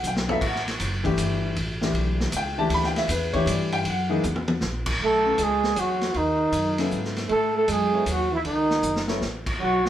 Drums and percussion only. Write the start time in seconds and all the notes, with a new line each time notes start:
0.03 hi-hat pedal
0.16 snare
0.29 floor tom
0.41 kick, crash
0.55 snare
0.68 snare, ride
0.80 hi-hat pedal, ride
1.05 kick, ride
1.18 hi-hat pedal, ride
1.56 ride
1.82 snare
1.95 ride
2.20 snare
2.32 hi-hat pedal, ride
2.70 ride
2.83 snare
2.96 snare, ride
3.09 hi-hat pedal, ride
3.34 kick, ride
3.47 hi-hat pedal, ride
3.72 ride
3.85 ride
4.23 hi-hat pedal, high tom
4.36 high tom
4.48 high tom
4.61 snare
4.86 kick, crash
5.38 hi-hat pedal, ride
5.64 snare
5.76 hi-hat pedal, ride
6.01 snare, ride
6.14 ride
6.52 hi-hat pedal, ride
6.78 snare, ride
6.91 hi-hat pedal
7.04 snare
7.16 snare, ride
7.29 ride
7.68 hi-hat pedal, ride
8.06 hi-hat pedal, ride
8.45 ride
8.70 snare
8.83 hi-hat pedal
8.96 snare
9.08 snare
9.21 snare
9.46 kick, crash
9.86 snare